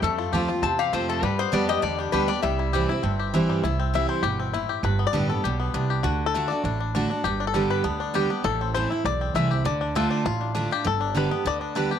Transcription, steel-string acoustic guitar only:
0.04 0.61 F2 loud
0.33 0.48 F3 medium
0.33 0.49 A3 medium
0.33 0.49 C4 loud
0.33 0.48 F4 loud
0.49 0.64 C4 soft
0.49 0.63 F4 medium
0.64 1.21 C3 medium
0.93 1.22 F3 loud
0.93 1.22 A3 medium
0.93 1.22 C4 loud
0.93 1.23 F4 medium
1.23 1.80 G2 loud
1.52 1.68 D3 medium
1.52 1.68 G3 loud
1.52 1.69 B3 loud
1.52 1.67 G4 loud
1.68 1.83 B3 soft
1.68 1.82 G4 medium
1.82 2.11 D3 medium
2.13 2.28 D3 medium
2.13 2.29 G3 loud
2.13 2.29 B3 medium
2.13 2.28 G4 loud
2.29 2.44 B3 soft
2.29 2.43 G4 medium
2.43 3.01 C3 medium
2.73 2.89 E3 loud
2.73 2.89 G3 medium
2.73 2.89 C4 medium
2.73 2.88 E4 loud
2.89 3.04 C4 medium
2.89 3.03 E4 medium
3.03 3.61 G2 medium
3.34 3.62 E3 loud
3.34 3.63 G3 medium
3.34 3.63 C4 loud
3.34 3.63 E4 medium
3.65 4.22 C3 medium
3.94 4.22 E3 medium
3.94 4.23 G3 medium
3.94 4.23 C4 medium
3.94 4.23 E4 loud
4.24 4.52 B2 medium
4.54 4.83 A2 medium
4.84 5.41 G2 medium
5.13 5.29 D3 loud
5.13 5.29 G3 loud
5.13 5.30 B3 medium
5.13 5.29 G4 medium
5.30 5.44 B3 soft
5.30 5.44 G4 medium
5.45 5.73 B2 medium
5.74 6.03 C3 medium
6.04 6.33 D3 loud
6.35 6.50 D3 medium
6.35 6.50 A3 medium
6.35 6.50 D4 loud
6.35 6.49 F#4 loud
6.50 6.65 D4 soft
6.50 6.64 F#4 medium
6.65 7.22 A2 loud
6.95 7.10 D3 medium
6.95 7.10 A3 medium
6.95 7.10 D4 medium
6.95 7.09 F#4 loud
7.11 7.25 D4 soft
7.11 7.24 F#4 medium
7.25 7.82 G2 medium
7.54 7.83 D3 medium
7.54 7.83 G3 medium
7.54 7.84 B3 medium
7.54 7.84 G4 loud
7.84 8.13 D3 medium
8.14 8.30 D3 medium
8.14 8.30 G3 medium
8.14 8.30 B3 loud
8.14 8.29 G4 loud
8.30 8.45 B3 soft
8.30 8.44 G4 medium
8.44 9.02 A2 medium
8.75 8.90 E3 loud
8.75 8.91 A3 medium
8.75 8.91 C4 loud
8.75 8.91 E4 loud
8.92 9.06 C4 soft
8.92 9.05 E4 medium
9.06 9.63 E2 medium
9.35 9.50 E3 loud
9.35 9.51 A3 loud
9.35 9.51 C4 medium
9.35 9.50 E4 medium
9.52 9.66 C4 soft
9.52 9.65 E4 medium
9.65 9.94 D3 loud
9.95 10.24 D3 loud
9.95 10.24 A3 loud
9.95 10.24 D4 loud
9.95 10.25 F4 loud
10.26 10.83 A2 medium
10.55 10.70 D3 medium
10.55 10.70 A3 medium
10.55 10.71 D4 medium
10.55 10.70 F4 loud
10.71 10.85 D4 soft
10.71 10.85 F4 medium
10.84 11.42 G2 loud
11.15 11.30 D3 loud
11.15 11.31 G3 medium
11.15 11.31 B3 loud
11.15 11.30 G4 loud
11.31 11.46 B3 soft
11.31 11.45 G4 medium
11.46 11.74 D3 loud
11.75 11.91 D3 medium
11.75 11.91 G3 loud
11.75 11.91 B3 medium
11.75 11.91 G4 loud
11.92 11.99 B3 soft
11.92 11.99 G4 medium

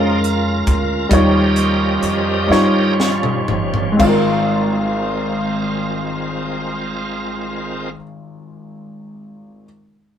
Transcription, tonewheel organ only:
0.00 0.19 F3 soft
0.00 0.19 A#3 soft
0.00 0.20 D#4 soft
0.00 1.07 F4 medium
0.00 1.10 A#4 medium
1.10 3.47 F3 soft
1.10 3.47 G3 soft
1.10 3.47 C#4 medium
1.10 2.94 G4 medium
1.10 2.94 A#4 medium
1.10 2.93 D#5 medium
3.48 3.95 F3 soft
3.48 3.95 G3 soft
3.48 3.95 C#4 soft
3.99 7.89 G#3 medium
3.99 7.89 C4 medium
3.99 7.89 F4 medium
3.99 7.89 A#4 medium

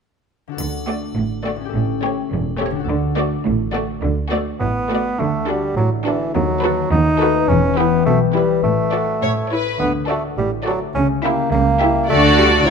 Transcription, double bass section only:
0.58 1.04 D2 soft
1.16 1.62 A1 soft
1.74 2.19 A1 soft
2.32 2.76 E1 medium
2.89 3.34 D2 medium
3.45 3.90 A1 medium
4.02 4.48 D2 medium
4.60 5.07 A1 medium
5.19 5.65 D2 soft
5.77 6.23 A1 soft
6.35 6.80 D#2 medium
6.92 7.37 D#2 medium
7.49 7.94 E1 medium
8.07 8.52 B1 medium
8.64 9.10 A1 soft
9.22 9.69 A1 soft
9.80 10.26 D2 soft
10.38 10.83 A1 soft
10.95 11.40 C#2 medium
11.52 11.98 C#2 medium
12.10 12.63 D2 medium
12.67 12.70 A1 medium

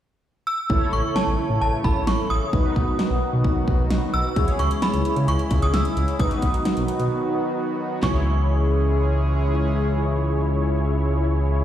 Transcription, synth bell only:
0.47 0.94 E6 loud
0.93 1.16 C#6 medium
1.16 1.60 A5 medium
1.61 1.85 A5 medium
1.84 2.06 B5 medium
2.07 2.18 C#6 medium
2.30 3.64 D#6 medium
4.14 4.61 E6 loud
4.59 4.83 C#6 medium
4.82 5.25 B5 medium
5.28 5.63 C#6 loud
5.63 5.74 D#6 medium
5.74 6.21 E6 loud
6.20 7.53 D#6 medium
8.03 11.64 C#6 medium

